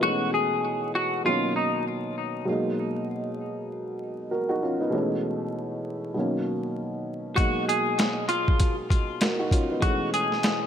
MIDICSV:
0, 0, Header, 1, 4, 480
1, 0, Start_track
1, 0, Key_signature, 5, "minor"
1, 0, Tempo, 612245
1, 24, Time_signature, 4, 2, 24, 8
1, 8363, End_track
2, 0, Start_track
2, 0, Title_t, "Clean electric guitar"
2, 0, Program_c, 0, 27
2, 21, Note_on_c, 0, 66, 82
2, 238, Note_off_c, 0, 66, 0
2, 265, Note_on_c, 0, 68, 69
2, 715, Note_off_c, 0, 68, 0
2, 746, Note_on_c, 0, 66, 81
2, 961, Note_off_c, 0, 66, 0
2, 986, Note_on_c, 0, 65, 92
2, 1200, Note_off_c, 0, 65, 0
2, 1223, Note_on_c, 0, 63, 67
2, 1439, Note_off_c, 0, 63, 0
2, 5771, Note_on_c, 0, 66, 104
2, 5993, Note_off_c, 0, 66, 0
2, 6025, Note_on_c, 0, 68, 77
2, 6475, Note_off_c, 0, 68, 0
2, 6497, Note_on_c, 0, 65, 83
2, 6862, Note_off_c, 0, 65, 0
2, 7700, Note_on_c, 0, 66, 89
2, 7918, Note_off_c, 0, 66, 0
2, 7948, Note_on_c, 0, 68, 72
2, 8363, Note_off_c, 0, 68, 0
2, 8363, End_track
3, 0, Start_track
3, 0, Title_t, "Upright piano"
3, 0, Program_c, 1, 0
3, 0, Control_c, 1, 64, 127
3, 0, Note_on_c, 1, 59, 59
3, 0, Note_on_c, 1, 63, 67
3, 4, Note_on_c, 1, 47, 59
3, 12, Note_on_c, 1, 52, 63
3, 21, Note_on_c, 1, 56, 62
3, 29, Note_on_c, 1, 57, 62
3, 34, Control_c, 1, 64, 0
3, 39, Note_on_c, 1, 61, 70
3, 156, Note_off_c, 1, 63, 0
3, 158, Note_off_c, 1, 59, 0
3, 193, Control_c, 1, 64, 127
3, 954, Note_off_c, 1, 47, 0
3, 959, Note_off_c, 1, 52, 0
3, 963, Note_off_c, 1, 56, 0
3, 967, Note_off_c, 1, 57, 0
3, 972, Note_off_c, 1, 61, 0
3, 975, Note_on_c, 1, 47, 66
3, 983, Note_on_c, 1, 51, 55
3, 991, Note_on_c, 1, 54, 59
3, 992, Control_c, 1, 64, 0
3, 998, Note_on_c, 1, 58, 55
3, 1007, Note_on_c, 1, 61, 72
3, 1132, Control_c, 1, 64, 127
3, 1909, Note_off_c, 1, 47, 0
3, 1918, Note_off_c, 1, 54, 0
3, 1921, Note_on_c, 1, 47, 68
3, 1924, Note_off_c, 1, 51, 0
3, 1930, Note_on_c, 1, 54, 60
3, 1932, Note_off_c, 1, 58, 0
3, 1936, Note_off_c, 1, 61, 0
3, 1938, Note_on_c, 1, 56, 59
3, 1946, Note_on_c, 1, 58, 62
3, 1952, Control_c, 1, 64, 0
3, 1955, Note_on_c, 1, 63, 70
3, 2095, Control_c, 1, 64, 127
3, 3356, Note_off_c, 1, 58, 0
3, 3360, Note_off_c, 1, 63, 0
3, 3380, Note_on_c, 1, 70, 59
3, 3384, Note_on_c, 1, 66, 53
3, 3508, Note_off_c, 1, 66, 0
3, 3520, Note_off_c, 1, 70, 0
3, 3520, Note_on_c, 1, 66, 71
3, 3525, Note_on_c, 1, 63, 59
3, 3614, Note_off_c, 1, 66, 0
3, 3616, Note_off_c, 1, 63, 0
3, 3624, Note_on_c, 1, 65, 66
3, 3628, Note_on_c, 1, 61, 60
3, 3762, Note_off_c, 1, 65, 0
3, 3764, Note_off_c, 1, 61, 0
3, 3764, Note_on_c, 1, 63, 65
3, 3769, Note_on_c, 1, 59, 58
3, 3821, Note_off_c, 1, 47, 0
3, 3825, Note_off_c, 1, 54, 0
3, 3829, Note_off_c, 1, 56, 0
3, 3840, Note_on_c, 1, 47, 63
3, 3848, Note_on_c, 1, 52, 64
3, 3857, Note_on_c, 1, 56, 62
3, 3864, Note_on_c, 1, 57, 60
3, 3872, Control_c, 1, 64, 0
3, 3872, Note_on_c, 1, 61, 73
3, 3995, Note_off_c, 1, 63, 0
3, 3997, Note_off_c, 1, 59, 0
3, 4022, Control_c, 1, 64, 127
3, 4792, Note_off_c, 1, 47, 0
3, 4796, Note_off_c, 1, 52, 0
3, 4801, Note_off_c, 1, 56, 0
3, 4805, Note_off_c, 1, 57, 0
3, 4809, Note_off_c, 1, 61, 0
3, 4814, Note_on_c, 1, 47, 64
3, 4822, Note_on_c, 1, 51, 55
3, 4830, Note_on_c, 1, 54, 59
3, 4835, Control_c, 1, 64, 0
3, 4839, Note_on_c, 1, 58, 56
3, 4847, Note_on_c, 1, 61, 71
3, 4981, Control_c, 1, 64, 127
3, 5751, Note_off_c, 1, 47, 0
3, 5760, Note_off_c, 1, 54, 0
3, 5763, Note_off_c, 1, 51, 0
3, 5763, Note_on_c, 1, 47, 66
3, 5771, Note_on_c, 1, 54, 58
3, 5772, Note_off_c, 1, 58, 0
3, 5776, Note_off_c, 1, 61, 0
3, 5779, Note_on_c, 1, 56, 57
3, 5789, Note_on_c, 1, 58, 58
3, 5793, Control_c, 1, 64, 0
3, 5797, Note_on_c, 1, 63, 68
3, 5932, Control_c, 1, 64, 127
3, 7197, Note_off_c, 1, 58, 0
3, 7202, Note_off_c, 1, 63, 0
3, 7223, Note_on_c, 1, 70, 59
3, 7228, Note_on_c, 1, 66, 54
3, 7351, Note_off_c, 1, 66, 0
3, 7361, Note_off_c, 1, 70, 0
3, 7363, Note_on_c, 1, 66, 72
3, 7369, Note_on_c, 1, 63, 60
3, 7455, Note_off_c, 1, 66, 0
3, 7458, Note_off_c, 1, 63, 0
3, 7466, Note_on_c, 1, 65, 66
3, 7470, Note_on_c, 1, 61, 57
3, 7603, Note_off_c, 1, 65, 0
3, 7605, Note_off_c, 1, 61, 0
3, 7605, Note_on_c, 1, 63, 66
3, 7609, Note_on_c, 1, 59, 58
3, 7662, Note_off_c, 1, 47, 0
3, 7666, Note_off_c, 1, 54, 0
3, 7670, Note_off_c, 1, 56, 0
3, 7682, Note_on_c, 1, 47, 60
3, 7690, Note_on_c, 1, 52, 65
3, 7698, Note_on_c, 1, 56, 64
3, 7706, Note_on_c, 1, 57, 59
3, 7714, Control_c, 1, 64, 0
3, 7716, Note_on_c, 1, 61, 71
3, 7835, Note_off_c, 1, 63, 0
3, 7837, Note_off_c, 1, 59, 0
3, 7864, Control_c, 1, 64, 127
3, 8363, Note_off_c, 1, 47, 0
3, 8363, Note_off_c, 1, 52, 0
3, 8363, Note_off_c, 1, 56, 0
3, 8363, Note_off_c, 1, 57, 0
3, 8363, Note_off_c, 1, 61, 0
3, 8363, End_track
4, 0, Start_track
4, 0, Title_t, "Drums"
4, 5783, Note_on_c, 9, 36, 108
4, 5783, Note_on_c, 9, 42, 83
4, 5862, Note_off_c, 9, 36, 0
4, 5862, Note_off_c, 9, 42, 0
4, 6030, Note_on_c, 9, 42, 76
4, 6108, Note_off_c, 9, 42, 0
4, 6262, Note_on_c, 9, 42, 82
4, 6269, Note_on_c, 9, 38, 111
4, 6340, Note_off_c, 9, 42, 0
4, 6347, Note_off_c, 9, 38, 0
4, 6497, Note_on_c, 9, 42, 65
4, 6575, Note_off_c, 9, 42, 0
4, 6649, Note_on_c, 9, 36, 91
4, 6728, Note_off_c, 9, 36, 0
4, 6739, Note_on_c, 9, 42, 93
4, 6744, Note_on_c, 9, 36, 91
4, 6818, Note_off_c, 9, 42, 0
4, 6823, Note_off_c, 9, 36, 0
4, 6981, Note_on_c, 9, 36, 95
4, 6990, Note_on_c, 9, 42, 71
4, 7060, Note_off_c, 9, 36, 0
4, 7068, Note_off_c, 9, 42, 0
4, 7219, Note_on_c, 9, 42, 92
4, 7225, Note_on_c, 9, 38, 113
4, 7298, Note_off_c, 9, 42, 0
4, 7304, Note_off_c, 9, 38, 0
4, 7458, Note_on_c, 9, 36, 89
4, 7467, Note_on_c, 9, 42, 88
4, 7536, Note_off_c, 9, 36, 0
4, 7545, Note_off_c, 9, 42, 0
4, 7701, Note_on_c, 9, 42, 84
4, 7702, Note_on_c, 9, 36, 105
4, 7780, Note_off_c, 9, 36, 0
4, 7780, Note_off_c, 9, 42, 0
4, 7948, Note_on_c, 9, 42, 73
4, 8026, Note_off_c, 9, 42, 0
4, 8093, Note_on_c, 9, 38, 36
4, 8172, Note_off_c, 9, 38, 0
4, 8180, Note_on_c, 9, 42, 83
4, 8187, Note_on_c, 9, 38, 113
4, 8258, Note_off_c, 9, 42, 0
4, 8265, Note_off_c, 9, 38, 0
4, 8363, End_track
0, 0, End_of_file